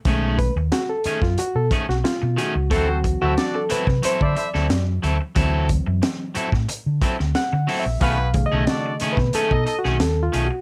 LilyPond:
<<
  \new Staff \with { instrumentName = "Horn section" } { \time 4/4 \key b \mixolydian \tempo 4 = 90 r1 | <c' fis' a' c''>8 r16 <e' a' c'' e''>16 <d' fis' a' d''>8 r8. <e' a' c'' e''>16 <e' a' c'' e''>16 r4 r16 | r1 | <b fis' gis' b'>8 r16 <dis' a' dis''>16 <d' fis' a' d''>8 r8. <dis' a' dis''>16 <dis' a' dis''>16 r4 r16 | }
  \new Staff \with { instrumentName = "Reed electric piano" } { \time 4/4 \key b \mixolydian r8 b'8 fis'16 a'8 eis'16 fis'16 a'8 fis'16 eis'8 fis'8 | a'16 fis'8 fis'8 a'16 b'8 c''16 d''4 r8. | r2. \tuplet 3/2 { fis''4 e''8 } | \tuplet 3/2 { eis''4 dis''8~ dis''4 b'8 a'4 fis'8 a'8 eis'8 fis'8 } | }
  \new Staff \with { instrumentName = "Reed electric piano" } { \clef bass \time 4/4 \key b \mixolydian <dis gis a cis'>8 r2. r8 | <e fis c'>1 | <e fis c'>4. r2 r8 | r8 <cis dis a gis'>4. r2 | }
  \new Staff \with { instrumentName = "Clean electric guitar" } { \time 4/4 \key b \mixolydian <dis a cis' gis'>8 r4 <dis a cis' gis'>16 r8. <dis a cis' gis'>16 r8. <dis a cis' gis'>16 r16 | <fis c' e' a'>16 r8 <fis c' e' a'>16 r8 <fis c' e' a'>16 r16 <fis c' e' a'>16 r8 <fis c' e' a'>16 r8 <fis c' e' a'>16 r16 | <fis c' e' a'>8 r4 <fis c' e' a'>16 r8. <fis c' e' a'>16 r8. <fis c' e' a'>16 r16 | <dis a cis' gis'>16 r8 <dis a cis' gis'>16 r8 <dis a cis' gis'>16 r16 <dis a cis' gis'>16 r8 <dis a cis' gis'>16 r8 <dis a cis' gis'>16 r16 | }
  \new Staff \with { instrumentName = "Fingered electric bass" } { \clef bass \time 4/4 \key b \mixolydian b,,8. dis,16 r8. fis,16 r16 b,16 r16 b,,16 r16 b,16 r16 cis,16 | d,8. d,16 r8. c16 r16 d16 r16 d,16 fis,8 d,16 r16 | d,8. fis,16 r8. a,16 r16 d16 r16 d,16 r16 d16 r16 ais,,16 | b,,8. b,,16 r8. b,16 r16 b,16 r16 b,,16 dis,8 b,,16 r16 | }
  \new DrumStaff \with { instrumentName = "Drums" } \drummode { \time 4/4 <hh bd>8 <hh bd>8 <hh sn>8 hh16 <bd sn>16 hh8 <hh bd>16 sn16 <hh sn>8 hh8 | <hh bd>8 <hh bd>8 <hh sn>8 hh16 <bd sn>16 hh16 bd16 hh16 sn16 <hh sn>8 hh8 | <hh bd>8 <hh bd>8 <hh sn>8 hh16 <bd sn>16 hh8 <hh bd>16 sn16 <hh sn>8 hho8 | <hh bd>8 <hh bd>8 <hh sn>8 hh16 <bd sn>16 hh16 bd16 hh16 sn16 <hh sn>8 hh8 | }
>>